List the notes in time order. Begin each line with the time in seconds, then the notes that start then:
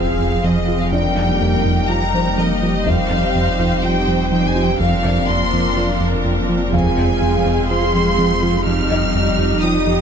Already playing: F1 F2 F3 C4 F4 G#4 F5, sub drop
0.20 F2
0.44 F2 D#5
0.68 F3
0.82 F5
0.92 F2 G3 A#3 D4 D#4 G4 A#4 D5 G5
1.17 F2
1.41 F2
1.65 F2
1.89 F3 A#5
2.14 F2 C5
2.38 F2 D#5
2.62 F3
2.86 F2 C4 C5 D#5 F5, taiko
3.10 F2
3.35 F2
3.60 F2, taiko
3.83 F3 G5
4.07 F2
4.31 F2 G5
4.48 G#5
4.56 F3
4.64 G5
4.80 F1 F2 A#3 D4 F4 A#4 D5 F5
5.05 F2 D5
5.28 F2 C6
5.53 F2
5.77 F3
6.01 F2
6.25 F2
6.49 F3
6.73 F2 G#3 C4 G#4 F5 G#5, taiko
6.98 F2
7.22 F2
7.46 F2
7.70 F3 C6
7.95 F2
8.19 F2
8.43 F3
8.66 F2 G3 D#4 G4 D#5 F6
8.90 F2 D#5
9.15 F2
9.39 F2
9.63 F3 D#6
9.87 F2